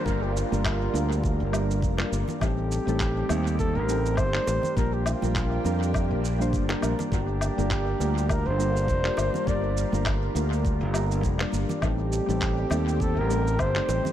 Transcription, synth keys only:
X:1
M:4/4
L:1/16
Q:"Swing 16ths" 1/4=102
K:Gm
V:1 name="Synth keys"
[G,B,DFB]3 [G,B,DFB]3 [G,B,DFB]4 [G,B,DFB]3 [G,B,DFd]3 | [G,A,CEA]3 [G,A,CEA]3 [G,A,CEA]4 [G,A,CEA]3 [G,A,CEd]3 | [G,B,DFB]3 [G,B,DFB]3 [G,B,DFB]4 z [G,B,DFc]2 [G,B,DFB] [G,B,DFB]2 | [G,B,DFB]3 [G,B,DFB]3 [G,B,DFB]4 [G,B,DFB]3 [G,B,DFd]3 |
[G,B,DFB]3 [G,B,DFB]3 [G,B,DFB]4 [G,B,DFB]3 [G,B,DFd]3 | [G,A,CEA]3 [G,A,CEA]3 [G,A,CEA]4 [G,A,CEA]3 [G,A,CEd]3 |]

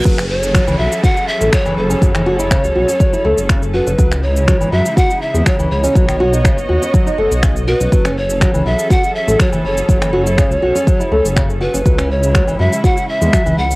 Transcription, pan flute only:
X:1
M:4/4
L:1/8
Q:1/4=122
K:F#dor
V:1 name="Pan flute"
B c2 e f e c c- | c6- c B- | B c2 e f e c c- | c6 z B- |
B c2 e f e c c- | c6- c B- | B c2 e f e2 f |]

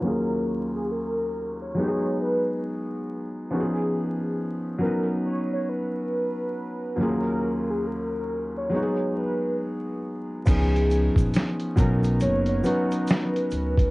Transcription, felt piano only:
X:1
M:4/4
L:1/16
Q:"Swing 16ths" 1/4=69
K:Cblyd
V:1 name="Felt piano"
[E,,G,B,DFA]8 [G,A,CE=GA]8 | [F,CDEGA]6 [^F,=B,^C^D=B]8- [F,B,CDB]2 | [E,,G,B,DFA]8 [G,A,CEGA]8 | [F,CDEA]6 [^F,=B,^C^D^A]4 [F,B,CD^F]4- [F,B,CDF] z |]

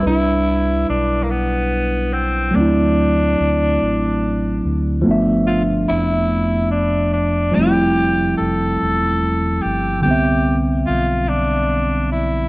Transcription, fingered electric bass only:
X:1
M:6/8
L:1/8
Q:3/8=48
K:C
V:1 name="Fingered electric bass" clef=bass
C,,2 B,,,4 | D,,2 D,, A,,,2 D,, | G,,,2 F,,,4 | F,,,2 F,,, E,,,2 G,,, |
C,,2 B,,,4 |]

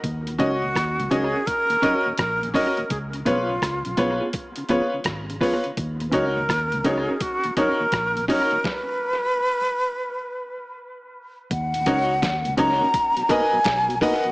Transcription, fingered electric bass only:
X:1
M:4/4
L:1/16
Q:"Swing 16ths" 1/4=84
K:Ebm
V:1 name="Fingered electric bass" clef=bass
E,,2 D,,2 E,, D,, D,, z4 z B,,,2 z2 | D,,2 C,,2 D,, C,, C,, z4 z A,,,2 z2 | E,,2 D,,2 E,, D,, D,, z4 z B,,,2 z2 | z16 |
E,,2 D,,2 E,, D,, D,, z4 z =B,,,2 z2 |]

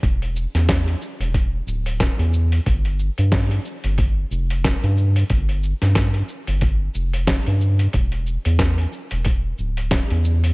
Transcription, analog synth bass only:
X:1
M:4/4
L:1/16
Q:"Swing 16ths" 1/4=91
K:Flyd
V:1 name="Analog synth bass" clef=bass
E,,,3 E,,3 z E,,,3 D,,,3 E,,3 | G,,,3 G,,3 z G,,,3 F,,,3 G,,3 | G,,,3 G,,3 z G,,,3 F,,,3 G,,3 | E,,,3 E,,3 z E,,,3 D,,,3 E,,3 |]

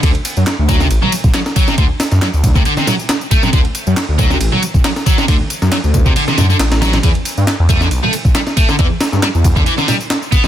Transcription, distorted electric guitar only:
X:1
M:4/4
L:1/16
Q:"Swing 16ths" 1/4=137
K:Dmix
V:1 name="Distorted electric guitar" clef=bass
D, z4 z F, C, z F, z2 F, z F, C, | D, z3 F, z2 C, D, C, F, z3 A, C, | D, z4 z F, C, z F, z2 F, z F, C, | D, z3 F, z2 C, D, C, D, D, z2 F, C, |
E, z4 z A, D, z A, z2 G, z A, D, | E, z3 G, z2 D, E, D, G, z3 B, D, |]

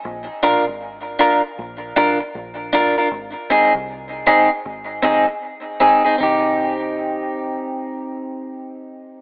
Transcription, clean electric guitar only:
X:1
M:4/4
L:1/16
Q:"Swing 16ths" 1/4=78
K:Cm
V:1 name="Clean electric guitar"
z2 [DFB] z3 [DFB] z3 [DFB] z3 [DFB] [DFB] | z2 [CEA] z3 [CEA] z3 [CEA] z3 [CEA] [CEA] | [CEG]16 |]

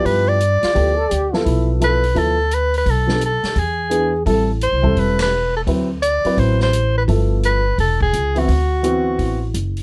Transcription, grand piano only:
X:1
M:4/4
L:1/8
Q:"Swing" 1/4=171
K:Ddor
V:1 name="Grand piano"
[F,B,EG]2 z2 [F,B,EA] z2 [F,B,EA]- | [F,B,EA]2 [F,B,EA] z [F,B,EA] z3 | z [F,B,DA] z4 [E,B,D^G] z | [G,CEA] z2 [G,CEA]3 z2 |
[^F,CEB] z2 [F,CEB]3 z2 | [F,B,EA]3 z4 [E,B,CE] | z2 [E,B,C^F]3 z3 |]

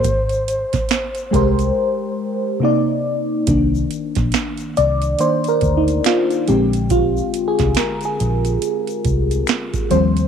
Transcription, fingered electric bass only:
X:1
M:4/4
L:1/16
Q:"Swing 16ths" 1/4=70
K:Cm
V:1 name="Fingered electric bass" clef=bass
A,,,3 z3 C,,2 z8 | C,,2 z B,,, z2 C,,2 z2 D,,2 z2 B,,,2- | B,,,2 z C,, z2 B,,,2 z2 C,,2 z2 E,,2 |]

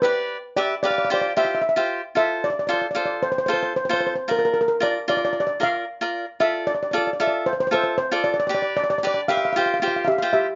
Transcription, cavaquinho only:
X:1
M:4/4
L:1/16
Q:1/4=114
K:F
V:1 name="Cavaquinho"
[G=Bd]2 z2 [GBe] z [GBf]2 [FGc]2 [FGc]2 z [FGc]2 z | [FAc]2 z2 [FAc] z [FAc]2 z2 [FAc]2 z [FAc]2 z | [FBd]2 z2 [FBd] z [FBd]2 z2 [FBd]2 z [FBd]2 z | [FAd]2 z2 [FAd] z [FAe]2 z2 [FAe]2 z [FAd]2 z |
[G=Bd]2 z2 [GBd] z [GBe]2 [FGc]2 [FGc]2 z [FGc]2 z |]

